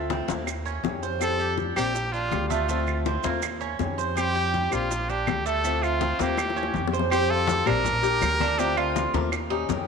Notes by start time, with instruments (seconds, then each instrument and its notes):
Already playing: upright bass D2, steel-string acoustic guitar D3 A3 C4 F4
0.10 cuban tres C4, high bongo, high conga, maracas
0.28 upright bass D#2, steel-string acoustic guitar A3 C4 F4, cuban tres A#3, high conga, maracas
0.46 muted steel-string acoustic guitar stroke, high bongo, high conga, claves, maracas
0.65 cuban tres C#4, high bongo, high conga, maracas
0.83 upright bass F2, steel-string acoustic guitar D#3 G3 C#4 G4, high bongo, low bongo, high conga, maracas
1.03 cuban tres C5, high bongo, high conga, maracas
1.19 steel-string acoustic guitar F3 G3 C4 G4, trumpet A4, high bongo, high conga, claves, maracas
1.39 cuban tres G4, high bongo, high conga, maracas
1.57 high bongo, high conga, maracas
1.76 upright bass A#1, steel-string acoustic guitar G3 C4 G4, trumpet G4, cuban tres A#4, high bongo, high conga, claves, maracas
1.95 muted steel-string acoustic guitar stroke, high bongo, high conga, maracas
2.12 cuban tres D4, trumpet F4, high conga, maracas
2.31 upright bass D2, steel-string acoustic guitar D3 G3 D4 G4, high bongo, low bongo, high conga, claves, maracas
2.49 cuban tres A3, trumpet F4, high bongo, high conga, maracas
2.69 steel-string acoustic guitar D3 A3 C4 F4, cuban tres A3, high bongo, high conga, maracas
2.87 high bongo, high conga, claves, maracas
3.06 cuban tres C4, high bongo, high conga, maracas
3.23 upright bass D#2, steel-string acoustic guitar A3 C4 F4, cuban tres A#3, high conga, maracas
3.42 muted steel-string acoustic guitar stroke, high bongo, high conga, claves, maracas
3.61 cuban tres C#4, high bongo, high conga, maracas
3.79 upright bass F2, steel-string acoustic guitar D#3 G3 C#4 G4, high bongo, low bongo, high conga, maracas
3.98 cuban tres C5, high bongo, high conga, maracas
4.16 steel-string acoustic guitar F3 G3 C4 G4, trumpet G4, high bongo, high conga, claves, maracas
4.35 cuban tres G4, high bongo, high conga, maracas
4.54 high bongo, high conga, maracas
4.71 upright bass A#1, steel-string acoustic guitar G3 C4 G4, trumpet F4, cuban tres A#4, high conga, claves, maracas
4.91 muted steel-string acoustic guitar stroke, high bongo, high conga, maracas
5.09 cuban tres D4, trumpet G4, high conga, maracas
5.27 upright bass D2, steel-string acoustic guitar D3 G3 D4 G4, high bongo, low bongo, high conga, claves, maracas
5.46 cuban tres A3, trumpet A4, high bongo, maracas
5.64 steel-string acoustic guitar D3 A3 C4 F4, cuban tres A3, high bongo, high conga, maracas
5.82 trumpet F4, high bongo, high conga, claves, maracas
6.01 cuban tres C4, high bongo, high conga, maracas
6.19 upright bass D#2, steel-string acoustic guitar A3 C4 F4, cuban tres A#3, trumpet G4, high conga, maracas
6.38 muted steel-string acoustic guitar stroke, high bongo, high conga, claves, maracas
6.50 high bongo
6.56 cuban tres C#4, high conga, maracas
6.63 high bongo
6.74 upright bass F2, steel-string acoustic guitar D#3 G3 C#4 G4, high conga, maracas
6.87 low bongo
6.92 cuban tres C5, high conga, maracas
6.99 low bongo
7.11 steel-string acoustic guitar F3 G3 C4 G4, trumpet G4, cuban tres C5, high bongo, high conga, claves, maracas
7.30 cuban tres F4, trumpet A4, high bongo, high conga
7.47 high bongo, high conga, maracas
7.66 upright bass A#1, steel-string acoustic guitar G3 C4 G4, cuban tres D4, trumpet A#4, high conga, low conga, claves, maracas
7.84 muted steel-string acoustic guitar stroke, high bongo, high conga, low conga, maracas
8.03 steel-string acoustic guitar G3 D4 G4, cuban tres G4, high bongo, high conga, maracas
8.22 upright bass D2, steel-string acoustic guitar D3 G3 D4, high bongo, low bongo, high conga, claves, maracas
8.40 cuban tres D4, high bongo, high conga, maracas
8.58 steel-string acoustic guitar D3 A3 C4 F4, cuban tres D4, trumpet G4, high bongo, high conga, maracas
8.77 cuban tres F4, trumpet F4, high bongo, high conga, claves
8.96 high bongo, high conga, maracas
9.14 upright bass D#2, steel-string acoustic guitar A3 C4 F4, cuban tres A#4, high conga, maracas
9.32 muted steel-string acoustic guitar stroke, high bongo, high conga, claves, maracas
9.50 steel-string acoustic guitar G3 C#4 G4, cuban tres D#4, high bongo, high conga
9.69 upright bass F2, steel-string acoustic guitar D#3 G3 C#4 G4, cuban tres A#4, high bongo, low bongo, high conga, maracas